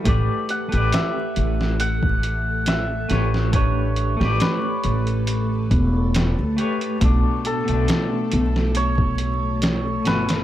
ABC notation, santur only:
X:1
M:4/4
L:1/8
Q:"Swing 16ths" 1/4=69
K:Amix
V:1 name="Santur"
z f e2 f2 e2 | c2 B4 z2 | z A3 c3 B |]